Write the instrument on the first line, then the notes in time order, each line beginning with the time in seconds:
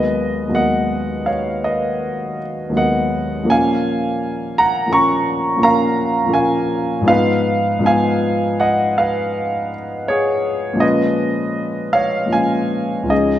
grand piano
Already playing: D#2 F#3 G#3 B3 A#4 B4 D#5
0.48 D#2 F#3 G#3
0.53 B3 A#4 D#5 F#5
1.26 C#5 F5
1.64 B4 D#5
2.69 D#2 F#3 G#3
2.75 B3 A#4 D#5 F#5
3.43 A#2 F3 A#3
3.48 C#4 A#4 F5 G#5
4.58 F#5 A#5
4.87 A#2 F3 A#3
4.91 C#4 A#4 A#5 C#6
5.57 A#2 F3 A#3
5.61 C#4 A#4 F5 A#5
6.26 A#2 F3 A#3
6.31 C#4 A#4 F5 G#5
7.01 G#2 F3 B3
7.06 D#4 F4 B4 F5
7.79 G#2 F3 B3
7.84 D#4 F4 F5 G#5
8.60 D#5 F#5
8.98 B4 F5
10.08 G#4 C#5
10.73 A#2 F3 G#3
10.78 C#4 F4 B4 D#5
11.93 C#5 F5
12.26 A#2 F3 G#3
12.31 C#4 F4 F5 G#5
13.03 C#2 F3 G#3
13.08 C#4 D#4 G#4 D#5